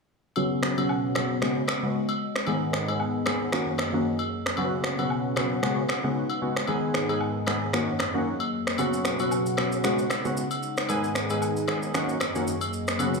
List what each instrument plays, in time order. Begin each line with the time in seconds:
0.36 analog synth pad B2 B3 C#4 F#4 F#5, synth keys C#3 F#3 B3 F#4, high agogo
0.63 finger snap, cross-stick
0.77 synth keys C#3 F#3 B3 F#4, high agogo
0.89 low woodblock
1.15 synth keys C#3 F#3 B3 F#4, finger snap, cross-stick, high agogo
1.42 synth keys C#3 G#3 B3 F#4, analog synth pad C#3 G#3 D#5, finger snap, cross-stick
1.68 finger snap, cross-stick, high agogo
1.82 synth keys C#3 G#3 B3 F#4
2.09 high agogo
2.36 finger snap, cross-stick
2.47 analog synth pad G#2 D#3 B3 G#4 D#5, synth keys D#3 G#3 B3 G#4, high agogo
2.73 finger snap, cross-stick
2.88 synth keys D#3 G#3 B3 G#4, high agogo
3.00 low woodblock
3.26 synth keys D#3 G#3 B3 G#4, finger snap, cross-stick, high agogo
3.52 analog synth pad F#2 F#3 A#3 G#4 D#5, synth keys D#3 A#3 C#4 F#4, finger snap, cross-stick
3.78 finger snap, cross-stick, high agogo
3.93 synth keys D#3 A#3 C#4 F#4
4.19 high agogo
4.46 finger snap, cross-stick
4.57 analog synth pad B2 C#4 B4 F#5, synth keys C#3 F#3 B3 F#4, high agogo
4.84 finger snap, cross-stick
4.98 synth keys C#3 F#3 B3 F#4, high agogo
5.10 low woodblock
5.36 synth keys C#3 F#3 B3 F#4, finger snap, cross-stick, high agogo
5.63 synth keys C#3 G#3 B3 F#4, analog synth pad C#3 G#3 D#4, finger snap, cross-stick
5.89 finger snap, cross-stick, high agogo
6.04 synth keys C#3 G#3 B3 F#4
6.30 high agogo
6.42 synth keys C#3 G#3 B3 F#4
6.56 finger snap, cross-stick
6.67 analog synth pad G#2 D#4 D#5, synth keys D#3 G#3 B3 G#4, high agogo
6.94 finger snap, cross-stick
7.09 synth keys D#3 G#3 B3 G#4, high agogo
7.21 low woodblock
7.47 synth keys D#3 G#3 B3 G#4, finger snap, cross-stick, high agogo
7.73 analog synth pad F#2 F#3 A#3 G#4, synth keys D#3 A#3 C#4 F#4, finger snap, cross-stick
7.99 finger snap, cross-stick, high agogo
8.14 synth keys D#3 A#3 C#4 F#4
8.40 high agogo
8.67 finger snap, cross-stick
8.78 analog synth pad B2 C#4 B4 F#5, synth keys C#3 F#3 B3 F#4, high agogo, shaker
8.93 shaker
9.05 finger snap, cross-stick, shaker
9.19 synth keys C#3 F#3 B3 F#4, high agogo, shaker
9.31 low woodblock, shaker
9.46 shaker
9.57 synth keys C#3 F#3 B3 F#4, finger snap, cross-stick, high agogo
9.72 shaker
9.84 synth keys C#3 G#3 B3 F#4, analog synth pad C#3 G#3 D#4, finger snap, cross-stick, shaker
9.99 shaker
10.10 finger snap, cross-stick, high agogo, shaker
10.25 synth keys C#3 G#3 B3 F#4, shaker
10.37 shaker
10.51 high agogo, shaker
10.63 shaker
10.77 finger snap, cross-stick, shaker
10.89 analog synth pad G#2 G#3 D#5, synth keys D#3 G#3 B3 G#4, high agogo, shaker
11.04 shaker
11.15 finger snap, cross-stick, shaker
11.30 synth keys D#3 G#3 B3 G#4, high agogo, shaker
11.42 low woodblock, shaker
11.57 shaker
11.68 synth keys D#3 G#3 B3 G#4, finger snap, cross-stick, high agogo
11.83 shaker
11.94 analog synth pad F#2 F#3 A#3 G#4, synth keys D#3 A#3 C#4 F#4, finger snap, cross-stick, shaker
12.09 shaker
12.20 finger snap, cross-stick, high agogo, shaker
12.35 synth keys D#3 A#3 C#4 F#4, shaker
12.47 shaker
12.61 high agogo, shaker
12.73 shaker
12.88 finger snap, cross-stick, shaker
12.99 analog synth pad B2 C#4 B4 F#5, synth keys C#3 F#3 B3 F#4, high agogo, shaker
13.14 shaker